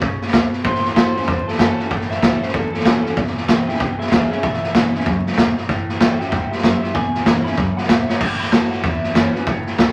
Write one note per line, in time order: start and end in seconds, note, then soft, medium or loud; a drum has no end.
0.01 0.14 B1 medium
0.01 0.32 C#3 loud
0.01 kick loud
0.01 snare soft
0.22 snare soft
0.28 snare soft
0.33 0.46 D2 medium
0.33 0.64 B2 loud
0.33 kick medium
0.33 snare loud
0.33 hi-hat pedal loud
0.53 snare soft
0.64 0.77 A1 medium
0.64 1.25 A2 loud
0.64 0.94 A2 medium
0.64 0.94 E3 medium
0.64 0.94 C5 loud
0.64 kick loud
0.64 snare soft
0.75 snare soft
0.84 0.92 C#2 medium
0.84 snare soft
0.95 1.14 A2 medium
0.95 1.15 E3 medium
0.95 1.14 E3 loud
0.95 1.15 A3 medium
0.95 1.16 C#4 medium
0.95 1.15 F#4 loud
0.95 1.14 C5 loud
0.95 kick loud
0.95 snare loud
0.95 hi-hat pedal medium
1.15 1.23 E2 medium
1.15 1.26 A2 medium
1.15 1.27 E3 medium
1.15 1.28 C#4 medium
1.15 1.27 F#4 medium
1.15 1.26 C5 loud
1.15 snare soft
1.22 snare soft
1.27 1.89 E2 loud
1.27 1.40 E2 medium
1.27 1.57 A2 medium
1.27 1.57 F#3 loud
1.27 1.47 C5 medium
1.27 kick loud
1.27 snare soft
1.48 1.58 A4 loud
1.48 snare soft
1.53 snare soft
1.59 1.72 F#2 loud
1.59 1.77 A2 medium
1.59 1.78 E3 medium
1.59 1.79 A3 loud
1.59 1.79 C#4 loud
1.59 1.77 F#4 loud
1.59 1.90 A4 loud
1.59 kick loud
1.59 snare loud
1.59 hi-hat pedal medium
1.79 1.89 A2 medium
1.79 1.90 E3 medium
1.79 1.91 C#4 medium
1.79 1.90 F#4 medium
1.79 muted upright bass stroke medium
1.79 snare soft
1.90 2.03 E2 loud
1.90 2.20 A2 medium
1.90 2.51 A2 loud
1.90 2.20 E3 medium
1.90 kick loud
1.90 snare soft
2.01 snare soft
2.11 2.18 F#2 loud
2.11 2.41 E5 loud
2.11 snare soft
2.22 2.35 C#2 medium
2.22 2.40 A2 medium
2.22 2.42 E3 medium
2.22 2.41 E3 loud
2.22 2.42 A3 medium
2.22 2.42 C#4 loud
2.22 2.42 F#4 medium
2.22 kick medium
2.22 snare loud
2.22 hi-hat pedal loud
2.42 2.52 A2 medium
2.42 2.53 E3 medium
2.42 2.55 C#4 medium
2.42 2.54 F#4 medium
2.42 2.53 C5 loud
2.42 muted upright bass stroke medium
2.42 snare soft
2.48 snare soft
2.53 2.66 F#1 loud
2.53 3.15 E2 loud
2.53 2.83 A2 medium
2.53 2.83 F#3 medium
2.53 2.72 A4 loud
2.53 kick loud
2.53 snare soft
2.73 3.15 A4 loud
2.73 muted upright bass stroke medium
2.73 snare soft
2.80 snare soft
2.85 2.98 A1 medium
2.85 3.03 A2 medium
2.85 3.03 E3 loud
2.85 3.05 E3 medium
2.85 3.05 A3 loud
2.85 3.05 C#4 loud
2.85 3.04 F#4 loud
2.85 kick medium
2.85 snare loud
2.85 hi-hat pedal medium
3.05 3.15 A2 medium
3.05 3.16 E3 medium
3.05 3.17 C#4 medium
3.05 3.16 F#4 medium
3.05 snare soft
3.16 3.29 E1 medium
3.16 3.46 E2 medium
3.16 3.78 E2 medium
3.16 3.46 B2 medium
3.16 kick loud
3.16 snare soft
3.27 snare soft
3.37 3.44 G#1 medium
3.37 snare soft
3.48 3.61 B1 medium
3.48 3.66 E2 medium
3.48 3.68 E3 medium
3.48 3.68 G#3 medium
3.48 3.68 C#4 medium
3.48 3.67 E4 medium
3.48 3.66 B4 loud
3.48 3.66 G5 loud
3.48 kick loud
3.48 snare loud
3.48 hi-hat pedal loud
3.67 3.79 E2 medium
3.67 3.79 B2 medium
3.67 3.80 C#4 soft
3.67 3.80 E4 medium
3.67 3.78 B4 medium
3.67 3.78 G5 medium
3.67 snare soft
3.74 snare soft
3.79 3.92 B1 medium
3.79 4.09 E2 medium
3.79 4.41 B2 medium
3.79 4.09 C#3 medium
3.79 3.98 B4 medium
3.79 3.99 G5 medium
3.79 kick loud
3.79 snare soft
3.99 4.10 G#4 medium
3.99 4.10 E5 loud
3.99 muted upright bass stroke medium
3.99 snare soft
4.06 snare soft
4.11 4.24 C#2 medium
4.11 4.29 E2 loud
4.11 4.30 B2 loud
4.11 4.31 E3 medium
4.11 4.31 G#3 loud
4.11 4.31 C#4 medium
4.11 4.30 E4 loud
4.11 4.29 G#4 medium
4.11 4.30 E5 medium
4.11 kick medium
4.11 snare loud
4.11 hi-hat pedal loud
4.30 4.42 E2 medium
4.30 4.42 B2 medium
4.30 4.43 C#4 soft
4.30 4.42 E4 medium
4.30 4.42 G#4 medium
4.30 4.41 E5 medium
4.30 snare soft
4.43 4.56 B1 loud
4.43 4.72 E2 medium
4.43 5.04 E2 medium
4.43 4.72 B2 medium
4.43 4.73 E5 loud
4.43 kick loud
4.43 snare soft
4.53 snare soft
4.63 4.70 C#2 loud
4.63 snare soft
4.74 4.87 G#1 loud
4.74 4.93 B2 loud
4.74 4.94 E3 medium
4.74 4.94 G#3 medium
4.74 4.94 C#4 medium
4.74 4.93 E4 medium
4.74 kick loud
4.74 snare loud
4.74 hi-hat pedal loud
4.94 5.05 E2 medium
4.94 5.05 B2 medium
4.94 5.06 C#4 medium
4.94 5.05 E4 medium
4.94 muted upright bass stroke medium
4.94 snare soft
5.00 snare soft
5.06 5.18 D2 loud
5.06 5.35 E2 medium
5.06 5.37 F#2 medium
5.06 5.35 C#3 loud
5.06 kick loud
5.06 snare soft
5.26 muted upright bass stroke medium
5.26 snare soft
5.32 snare soft
5.37 5.50 E1 medium
5.37 5.55 E2 loud
5.37 5.68 G#2 loud
5.37 5.56 B2 loud
5.37 kick loud
5.37 snare loud
5.37 hi-hat pedal loud
5.57 5.68 E2 medium
5.57 5.68 B2 medium
5.57 snare soft
5.69 5.81 A1 loud
5.69 5.98 A2 medium
5.69 6.29 A2 medium
5.69 5.98 E3 loud
5.69 kick loud
5.69 snare soft
5.89 5.96 C#2 medium
5.89 snare soft
6.00 6.13 E2 loud
6.00 6.19 E3 medium
6.00 6.19 E3 loud
6.00 6.20 A3 loud
6.00 6.20 C#4 medium
6.00 6.19 F#4 loud
6.00 6.18 E5 medium
6.00 6.19 G5 loud
6.00 kick medium
6.00 snare loud
6.00 hi-hat pedal loud
6.19 6.27 E2 medium
6.19 6.31 A2 medium
6.19 6.31 E3 medium
6.19 6.32 C#4 medium
6.19 6.31 F#4 medium
6.19 6.29 E5 medium
6.19 6.30 G5 loud
6.19 snare soft
6.30 6.44 E2 loud
6.30 6.62 G#2 loud
6.30 6.61 A2 medium
6.30 6.61 F#3 medium
6.30 6.50 E5 medium
6.30 6.51 G5 medium
6.30 kick loud
6.30 snare soft
6.51 6.61 G4 medium
6.51 6.62 E5 loud
6.51 snare soft
6.58 snare soft
6.62 6.93 F#2 medium
6.62 6.76 F#2 loud
6.62 6.81 A2 loud
6.62 6.82 E3 loud
6.62 6.81 G4 loud
6.62 6.81 E5 loud
6.62 kick medium
6.62 snare loud
6.62 hi-hat pedal loud
6.82 6.93 A2 medium
6.82 6.94 E3 medium
6.82 6.93 G4 medium
6.82 6.94 E5 loud
6.82 snare soft
6.94 7.07 E1 loud
6.94 7.55 E2 medium
6.94 7.24 E2 medium
6.94 7.24 B2 loud
6.94 7.25 G#5 loud
6.94 kick loud
6.94 snare soft
7.15 7.22 C#2 medium
7.15 snare soft
7.25 7.38 G#1 loud
7.25 7.44 E2 medium
7.25 7.44 B2 loud
7.25 7.45 E3 medium
7.25 7.45 G#3 medium
7.25 7.46 C#4 loud
7.25 7.44 E4 medium
7.25 kick loud
7.25 snare loud
7.25 hi-hat pedal loud
7.44 7.56 E2 medium
7.44 7.57 B2 medium
7.44 7.58 C#4 medium
7.44 7.57 E4 medium
7.44 7.76 B5 loud
7.44 muted upright bass stroke medium
7.44 snare soft
7.52 snare soft
7.57 7.70 D2 medium
7.57 7.87 E2 medium
7.57 7.88 F#2 loud
7.57 7.87 C#3 loud
7.57 kick loud
7.57 snare soft
7.77 7.88 F#5 loud
7.77 snare soft
7.83 snare soft
7.88 8.02 E1 medium
7.88 8.07 E2 loud
7.88 8.20 G#2 loud
7.88 8.07 B2 loud
7.88 8.08 E5 medium
7.88 kick loud
7.88 snare loud
7.88 hi-hat pedal loud
8.09 8.19 E2 medium
8.09 8.20 B2 medium
8.09 8.20 C#5 loud
8.09 snare medium
8.20 8.33 A1 medium
8.20 8.50 A2 medium
8.20 8.82 A2 medium
8.20 8.50 E3 medium
8.20 kick loud
8.20 snare soft
8.20 crash loud
8.40 8.48 C#2 medium
8.40 8.52 B5 loud
8.40 snare soft
8.51 8.65 E2 medium
8.51 8.70 A2 medium
8.51 8.82 E3 medium
8.51 8.70 E3 loud
8.51 8.83 A3 medium
8.51 8.83 C#4 medium
8.51 8.83 F#4 medium
8.51 8.71 A5 medium
8.51 kick medium
8.51 snare loud
8.51 hi-hat pedal medium
8.71 8.82 A2 medium
8.71 8.83 E3 medium
8.71 8.83 F#5 medium
8.71 snare soft
8.83 8.96 E2 medium
8.83 9.45 E2 loud
8.83 9.13 A2 medium
8.83 9.13 F#3 medium
8.83 9.14 E5 loud
8.83 kick loud
8.83 snare soft
9.04 muted upright bass stroke medium
9.04 snare soft
9.14 9.28 F#2 medium
9.14 9.33 A2 medium
9.14 9.34 E3 loud
9.14 9.33 E3 loud
9.14 9.34 A3 loud
9.14 9.35 C#4 loud
9.14 9.33 F#4 loud
9.14 9.34 C#5 loud
9.14 kick medium
9.14 snare loud
9.14 hi-hat pedal medium
9.35 9.45 A2 medium
9.35 9.46 E3 medium
9.35 9.47 C#4 soft
9.35 9.46 F#4 medium
9.35 9.47 B4 medium
9.35 snare soft
9.46 9.76 A2 medium
9.46 9.92 A2 medium
9.46 9.76 E3 medium
9.46 9.78 C#5 loud
9.46 kick loud
9.46 snare soft
9.67 9.74 F#2 medium
9.67 snare soft
9.78 9.91 C#2 medium
9.78 9.92 A2 medium
9.78 9.92 E3 loud
9.78 9.92 E3 medium
9.78 9.92 A3 medium
9.78 9.92 C#4 medium
9.78 9.92 F#4 medium
9.78 kick loud
9.78 snare loud
9.78 hi-hat pedal medium